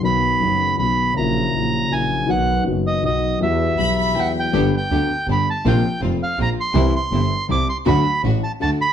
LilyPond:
<<
  \new Staff \with { instrumentName = "Violin section" } { \time 3/4 \key e \minor \tempo 4 = 161 r2. | r2. | r2. | r4 b''8 b''8 g''4 |
\key c \lydian r2. | r2. | r2. | r2. | }
  \new Staff \with { instrumentName = "Bandoneon" } { \time 3/4 \key e \minor b''2 b''4 | ais''2 gis''4 | fis''4 r8 dis''8 dis''4 | e''2 fis''8 g''8~ |
\key c \lydian g''8 g''4. b''8 a''8 | g''4 r8 f''8 bes''8 c'''8~ | c'''8 c'''4. d'''8 c'''8 | b''4 r8 a''8 a''8 b''8 | }
  \new Staff \with { instrumentName = "String section" } { \time 3/4 \key e \minor r2. | r2. | r2. | r2. |
\key c \lydian <b d' g'>8 r8 <b d' g'>8 r8 <b d' g'>8 r8 | <bes c' f'>8 r8 <bes c' f'>8 r8 <bes c' f'>8 r8 | <g c' e'>8 r8 <g c' e'>8 r8 <g c' e'>8 r8 | <a d' fis'>8 r8 <a d' fis'>8 r8 <a d' fis'>8 r8 | }
  \new Staff \with { instrumentName = "Grand piano" } { \clef bass \time 3/4 \key e \minor <b,, b, dis fis b fis'>4 <fis,, fis, dis fis b fis'>4 <b,, b, dis fis b fis'>4 | <ais,, ais, cis fis ais e'>4 <ais,, ais, cis fis ais e'>4 <ais,, ais, cis fis ais e'>4 | <b,, b, dis fis b fis'>4 <fis,, fis, dis fis b fis'>4 <b,, b, dis fis b fis'>4 | <e, e g b fis'>4 <b,, b, e g b fis'>4 <e, e fis g b>4 |
\key c \lydian <g,, g, d g b g'>8 r8 <d, d>8 r8 <g,, g,>8 r8 | <bes,, bes, c f bes f'>8 r8 <f,, f,>8 r8 <bes,, bes,>8 r8 | <c, c e g e'>8 r8 <g,, g,>8 r8 <c, c>8 r8 | <d, d fis a fis'>8 r8 <a,, a,>8 r8 <d, d>8 r8 | }
  \new Staff \with { instrumentName = "Double bass" } { \clef bass \time 3/4 \key e \minor b,,4 fis,,4 b,,4 | ais,,4 ais,,4 ais,,4 | b,,4 fis,,4 b,,4 | e,4 b,,4 e,4 |
\key c \lydian g,,8 r8 d,8 r8 g,,8 r8 | bes,,8 r8 f,,8 r8 bes,,8 r8 | c,8 r8 g,,8 r8 c,8 r8 | d,8 r8 a,,8 r8 d,8 r8 | }
>>